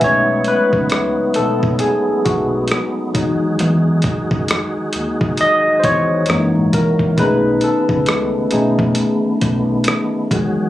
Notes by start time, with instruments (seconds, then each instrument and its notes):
Already playing: tine electric piano B4 E5
0.01 upright bass B1, tonewheel organ F#3 B3 D#4, tine electric piano G#3 A3 C#4 D#4 C#5, kick, closed hi-hat
0.44 tine electric piano B4, closed hi-hat
0.73 upright bass C#2, kick
0.90 cross-stick, closed hi-hat
1.34 upright bass B1, tine electric piano A4, closed hi-hat
1.63 upright bass B2, kick
1.79 tine electric piano G#4, closed hi-hat
2.08 muted upright bass stroke
2.25 upright bass B1, tine electric piano F#4, kick, closed hi-hat
2.68 cross-stick, closed hi-hat
3.14 upright bass E2, tonewheel organ D#3 F#4 G#4, tine electric piano F#3 G#3 D#4, kick, closed hi-hat
3.59 upright bass E2, closed hi-hat
4.02 kick, closed hi-hat
4.31 upright bass F#2, kick
4.48 cross-stick, closed hi-hat
4.77 muted upright bass stroke
4.93 upright bass D#2, closed hi-hat
5.21 kick
5.37 tine electric piano D#5, closed hi-hat
5.66 muted upright bass stroke
5.80 tine electric piano C5, closed hi-hat
5.84 upright bass E2, tine electric piano C#5, kick
6.26 upright bass F#2, tonewheel organ E3 F#3 A#3, tine electric piano E3 G#3 A#3, cross-stick, closed hi-hat
6.30 tine electric piano D#4
6.55 upright bass G#2
6.73 tine electric piano A#4, kick, closed hi-hat
6.99 upright bass A#1, kick
7.17 upright bass B1, tonewheel organ D#3 A3 B3, tine electric piano A3 C#4 D#4 G#4 B4, kick, closed hi-hat
7.61 tine electric piano A4, closed hi-hat
7.89 upright bass C#2, kick
8.06 cross-stick, closed hi-hat
8.51 upright bass B1, tine electric piano A3 C#4 D#4 G#4, closed hi-hat
8.79 upright bass B2, kick
8.95 closed hi-hat
9.24 muted upright bass stroke
9.41 upright bass B1, kick, closed hi-hat
9.84 cross-stick, closed hi-hat
10.31 upright bass E2, tine electric piano D#3 F#3 G#3, tonewheel organ F#3 F#4 G#4, kick, closed hi-hat